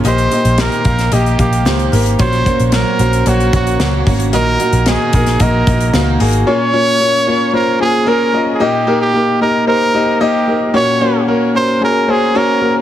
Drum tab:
HH |xxxxxxxxxxxxxxox|xxxxx-xxxxxxx-ox|x-xxx-xxx-xxx-ox|----------------|
SD |----o--o----o---|----o-------o---|----o--o----o---|----------------|
BD |------o---o-----|o-o-------o---o-|------o-o-o-----|----------------|

HH |----------------|----------------|
SD |----------------|----------------|
BD |----------------|----------------|